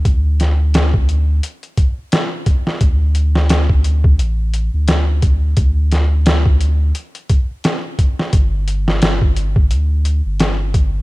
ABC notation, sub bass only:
X:1
M:4/4
L:1/16
Q:"Swing 16ths" 1/4=87
K:Gdor
V:1 name="Sub bass" clef=bass
D,,8 z8 | D,,8 A,,,3 D,,4- D,, | D,,8 z8 | G,,,8 D,,3 G,,,4- G,,, |]